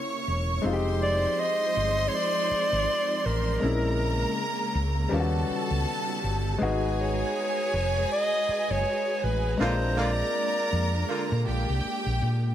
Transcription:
Already playing: string machine C#3 A#3 C#4 E4, grand piano A#3 C#4 E4 G4, violin section C#5 C#6
0.28 fingered electric bass E1
0.62 fingered electric bass F1, string machine F3 G#3 C4 D#4, grand piano G#3 C4 D#4, violin section C5 C6
0.66 grand piano F4
0.73 grand piano G4
1.03 clarinet D5
1.39 clarinet D#5
1.77 fingered electric bass G1
2.08 clarinet C#5
2.15 clarinet D5
2.51 muted fingered electric bass stroke
2.73 fingered electric bass G#1
3.26 fingered electric bass A1, clarinet A#4
3.60 fingered electric bass A#1, string machine C#3 G#3 A#3, grand piano G#3 C4 C#4, violin section A#4 A#5
3.64 grand piano E4
4.75 fingered electric bass C#2
5.09 fingered electric bass D#2, string machine D#3 G3 B3 F#4, grand piano G3 B3 C#4, violin section A4 A5
5.14 grand piano F4
5.20 grand piano F#4
5.50 muted fingered electric bass stroke
5.71 fingered electric bass C#2
6.24 fingered electric bass G1
6.58 fingered electric bass G#1, grand piano G#3 B3 D#4, string machine G#3 F#4 B4 A#5, violin section G#4 G#5
6.63 grand piano F#4
7.01 clarinet C#5
7.74 fingered electric bass F1
8.12 clarinet D#5
8.49 muted fingered electric bass stroke
8.71 fingered electric bass F#1, clarinet C#5
9.24 fingered electric bass A1, clarinet B4
9.57 fingered electric bass A#1, horn section D3 A#3 F4, grand piano G#3 C4 D4, string machine A#3 D4, violin section A#4 A#5
9.61 grand piano F4, clarinet C5
9.97 horn section D3 A#3 F4, clarinet D5
10.73 fingered electric bass F2
11.09 horn section D3 A#3 F4
11.32 fingered electric bass A#2
11.47 fingered electric bass A#1, violin section G4 G5
11.69 fingered electric bass C2
11.85 muted fingered electric bass stroke
12.06 fingered electric bass A#1
12.22 fingered electric bass A#2

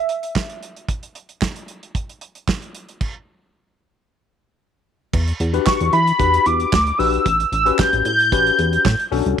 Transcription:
Already playing: soft synth lead E5
0.09 closed hi-hat
0.23 closed hi-hat
0.35 kick, snare, clap
0.50 closed hi-hat
0.63 closed hi-hat
0.77 closed hi-hat
0.89 kick, closed hi-hat
1.03 closed hi-hat
1.15 closed hi-hat
1.29 closed hi-hat
1.41 kick, snare, clap
1.56 closed hi-hat
1.68 closed hi-hat
1.83 closed hi-hat
1.95 kick, closed hi-hat
2.09 closed hi-hat
2.21 closed hi-hat
2.35 closed hi-hat
2.48 kick, snare, clap
2.62 closed hi-hat
2.75 closed hi-hat
2.89 closed hi-hat
3.01 kick, crash
5.13 analog synth bass E2, kick, crash
5.27 closed hi-hat
5.40 analog synth bass E2, closed hi-hat
5.53 tine electric piano D4 F#4 G4 B4, closed hi-hat
5.66 soft synth lead C#6, kick, snare, clap
5.81 analog synth bass E2, closed hi-hat
5.93 analog synth bass E3, soft synth lead B5, closed hi-hat
6.07 closed hi-hat
6.19 analog synth bass E2, tine electric piano D4 F#4 G4 B4, kick, closed hi-hat
6.34 closed hi-hat
6.46 analog synth bass E2, soft synth lead D6, closed hi-hat
6.60 closed hi-hat
6.73 analog synth bass D2, kick, snare, clap
6.87 closed hi-hat
6.98 analog synth bass A#1, tine electric piano D4 F#4 G4 B4, soft synth lead E6, open hi-hat
7.13 closed hi-hat
7.26 analog synth bass A1, kick, closed hi-hat
7.40 closed hi-hat
7.52 analog synth bass A1, soft synth lead E6, closed hi-hat
7.66 tine electric piano C#4 F#4 G4 B4, closed hi-hat
7.79 soft synth lead G6, kick, snare, clap
7.93 analog synth bass A1, closed hi-hat
8.05 analog synth bass A2, soft synth lead G6, closed hi-hat
8.20 closed hi-hat
8.32 analog synth bass A1, tine electric piano C#4 F#4 G4 B4, kick, closed hi-hat
8.47 closed hi-hat
8.59 analog synth bass E2, closed hi-hat
8.73 closed hi-hat
8.85 analog synth bass A2, kick, snare, clap
8.99 closed hi-hat
9.11 analog synth bass B1, tine electric piano C#4 D4 F#4 A4, open hi-hat
9.26 analog synth bass C2, closed hi-hat

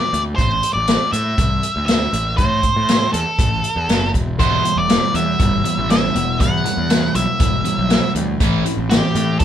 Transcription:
Already playing: lead electric guitar D5
0.13 picked electric bass D2, closed hi-hat
0.36 picked electric bass A1, lead electric guitar C5, kick, closed hi-hat
0.63 closed hi-hat
0.73 picked electric bass A1, lead electric guitar D5
0.87 snare, closed hi-hat
1.12 picked electric bass A2, lead electric guitar E5, closed hi-hat
1.38 picked electric bass C2, kick, closed hi-hat
1.63 closed hi-hat
1.76 picked electric bass D2
1.86 lead electric guitar E5, snare, closed hi-hat
2.13 picked electric bass A1, closed hi-hat
2.37 picked electric bass A2, lead electric guitar C5, kick, closed hi-hat
2.63 kick, closed hi-hat
2.76 picked electric bass A2
2.88 snare, closed hi-hat
3.13 picked electric bass E2, lead electric guitar A4, closed hi-hat
3.39 picked electric bass A1, kick, closed hi-hat
3.64 closed hi-hat
3.76 picked electric bass E2
3.89 picked electric bass F#1, snare, closed hi-hat
4.14 picked electric bass E1, kick, closed hi-hat
4.39 picked electric bass E1, distorted electric guitar E2 B2 E3, twelve-string acoustic guitar E2 B2 E3 G3 E4, overdriven electric guitar B3, lead electric guitar C5, kick, closed hi-hat
4.65 distorted electric guitar E2 B2, overdriven electric guitar E3 G3, closed hi-hat
4.76 picked electric bass E1, lead electric guitar D5
4.89 distorted electric guitar E2 B2, twelve-string acoustic guitar E3 G3 B3, snare, closed hi-hat
5.14 distorted electric guitar E2 B2, picked electric bass E2, twelve-string acoustic guitar E3 G3 B3 E4, lead electric guitar E5, closed hi-hat
5.40 picked electric bass G1, distorted electric guitar E2 B2, twelve-string acoustic guitar E3 G3 B3 E4, kick, closed hi-hat
5.64 distorted electric guitar E2 B2, overdriven electric guitar E3 G3, closed hi-hat
5.78 picked electric bass A1
5.89 distorted electric guitar E2 B2, twelve-string acoustic guitar E3 G3 B3 E4, lead electric guitar E5, snare, closed hi-hat
6.14 picked electric bass E1, distorted electric guitar E2 B2, twelve-string acoustic guitar E3 G3 B3 E4, closed hi-hat
6.40 twelve-string acoustic guitar E2 B2 E3 G3 B3 E4, distorted electric guitar E2 B2, picked electric bass E2, lead electric guitar F#5, kick, closed hi-hat
6.64 distorted electric guitar E2 B2, overdriven electric guitar E3 G3, closed hi-hat
6.77 picked electric bass E2
6.89 distorted electric guitar E2 B2, twelve-string acoustic guitar E3 G3 B3 E4, snare, closed hi-hat
7.14 picked electric bass B1, distorted electric guitar E2 B2, twelve-string acoustic guitar E3 G3 B3 E4, lead electric guitar E5, closed hi-hat
7.39 picked electric bass E1, distorted electric guitar E2 B2, twelve-string acoustic guitar E3 G3 B3 E4, kick, closed hi-hat
7.64 distorted electric guitar E2 B2, overdriven electric guitar E3 G3, closed hi-hat
7.78 picked electric bass B1
7.89 distorted electric guitar E2 B2, twelve-string acoustic guitar E3 G3 B3 E4, snare, closed hi-hat
8.15 picked electric bass D2, distorted electric guitar E2 B2, twelve-string acoustic guitar E3 G3 B3 E4, closed hi-hat
8.40 picked electric bass A1, distorted electric guitar A2 E3 A3, twelve-string acoustic guitar A2 E3 A3 C4 E4, kick, closed hi-hat
8.65 overdriven electric guitar A2 E3, distorted electric guitar A2 E3, closed hi-hat
8.77 picked electric bass A1
8.90 overdriven electric guitar A2, distorted electric guitar A2 E3, twelve-string acoustic guitar E3 A3 C4 E4, lead electric guitar G4, snare, closed hi-hat
9.15 picked electric bass A2, overdriven electric guitar A2 E3, distorted electric guitar A2 E3, twelve-string acoustic guitar A3 C4 E4, closed hi-hat
9.39 picked electric bass C2, overdriven electric guitar A2, distorted electric guitar A2 E3, twelve-string acoustic guitar E3 A3, lead electric guitar A4, kick, closed hi-hat

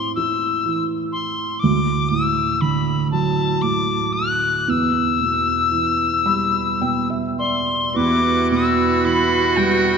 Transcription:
Already playing: felt piano A2 E3 C4, tin whistle C6
0.16 felt piano E4, tin whistle E6
0.66 felt piano E3
1.12 tin whistle C6
1.59 felt piano D2, tin whistle D6
2.09 felt piano A2, tin whistle E6
2.61 felt piano D3, tin whistle B5
3.11 felt piano F#3, tin whistle A5
3.62 felt piano A2, tin whistle D6
4.13 tin whistle F#6
4.68 felt piano E2, tin whistle E6
5.21 felt piano B2
5.72 felt piano E3
6.25 felt piano G3 B5
6.81 felt piano B2 G5
7.10 felt piano E5
7.39 felt piano D5, tin whistle C6
7.95 felt piano E2, accordion G3 E4 B4, cello F#4, tin whistle D6
8.51 felt piano B2, tin whistle E6
9.04 felt piano E3, tin whistle B5
9.57 felt piano G3, tin whistle G5

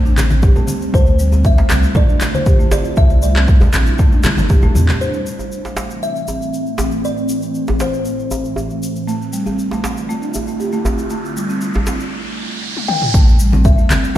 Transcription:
Already playing: sub bass A1, ambient pad G3 A3 C4, kalimba C5
0.05 marimba D4, shaker
0.18 clap, high conga, djembe tone, shaker
0.31 high conga, shaker
0.42 marimba G4, kick, djembe tone, shaker
0.56 marimba A3, low conga, shaker
0.67 marimba C4, high conga, shaker
0.82 shaker
0.94 sub bass D2, ambient pad D3 A3 E4 F4, marimba A3, kalimba C5, kick, shaker
1.06 high conga, shaker
1.19 marimba G3, shaker
1.32 marimba C4, djembe tone, shaker
1.44 kalimba E5, kick, shaker
1.58 marimba A3, djembe slap, shaker
1.70 sub bass C2, marimba C4, clap, djembe slap, high conga, shaker
1.83 shaker
1.95 marimba A3, kalimba D5, kick, high conga, low conga, shaker
2.09 marimba D4, shaker
2.21 clap, djembe tone, shaker
2.35 kalimba C5, high conga, shaker
2.46 marimba G4, kick, shaker
2.59 marimba A3, shaker
2.71 marimba C4, kalimba D5, djembe slap, djembe tone, djembe bass, shaker
2.84 shaker
2.96 sub bass C2, ambient pad C3 G3 D4, marimba A3, kalimba E5, kick, shaker
3.10 high conga, shaker
3.22 marimba G3, kalimba D5, shaker
3.35 marimba C4, clap, djembe tone, shaker
3.48 kick, shaker
3.61 marimba A3, djembe slap, djembe bass, low conga, shaker
3.73 sub bass A1, marimba C4, clap, djembe slap, high conga, shaker
3.86 shaker
3.99 marimba A3, kick, high tom, shaker
4.12 marimba D4, high tom, shaker
4.23 clap, high tom, djembe tone, high conga, low conga, shaker
4.37 sub bass G1, mid tom, high conga, shaker
4.49 marimba G4, kick, mid tom, djembe tone, shaker
4.62 marimba A3, djembe tone, low conga, shaker
4.75 sub bass E2, marimba C4, mid tom, high conga, shaker
4.89 clap, mid tom, shaker
5.01 ambient pad A2 E3 A3 C4, kalimba C5, crash, shaker
5.13 shaker
5.26 shaker
5.39 djembe tone, shaker
5.52 shaker
5.65 djembe slap, shaker
5.77 djembe slap, shaker
5.90 shaker
6.03 kalimba E5, shaker
6.16 shaker
6.28 djembe tone, shaker
6.42 shaker
6.53 shaker
6.66 shaker
6.78 djembe slap, djembe tone, djembe bass, shaker
6.91 shaker
7.05 kalimba D5, shaker
7.17 shaker
7.29 shaker
7.42 shaker
7.54 shaker
7.67 djembe slap, djembe bass, shaker
7.80 kalimba C5, djembe slap, shaker
7.94 shaker
8.05 shaker
8.19 shaker
8.31 djembe tone, shaker
8.45 shaker
8.56 djembe tone, shaker
8.70 shaker
8.83 shaker
8.96 shaker
9.08 ambient pad D3 A3 E4 F4, marimba A3, riser, shaker
9.22 shaker
9.33 marimba G3, shaker
9.46 marimba C4, djembe tone, shaker
9.59 shaker
9.71 marimba A3, djembe slap, shaker
9.84 marimba C4, djembe slap, shaker
9.97 shaker
10.09 marimba A3, shaker
10.22 marimba D4, shaker
10.34 djembe tone, shaker
10.47 shaker
10.60 marimba G4, shaker
10.72 marimba A3, shaker
10.85 marimba C4, djembe slap, djembe tone, djembe bass, shaker
10.98 shaker
11.10 ambient pad C3 G3 D4 E4, marimba A3, shaker
11.25 shaker
11.36 marimba G3, shaker
11.49 marimba C4, shaker
11.61 shaker
11.73 marimba A3, djembe slap, djembe bass, shaker
11.86 marimba C4, djembe slap, shaker
12.00 shaker
12.77 high tom
12.88 kalimba G5, mid tom
13.02 mid tom
13.14 sub bass A1, ambient pad G3 A3 C4, marimba A3, kick, shaker
13.28 shaker
13.39 marimba G3, shaker
13.53 marimba C4, high conga, shaker
13.65 kalimba E5, kick, shaker
13.78 marimba A3, shaker
13.90 sub bass G1, marimba C4, clap, high conga, shaker
14.04 shaker

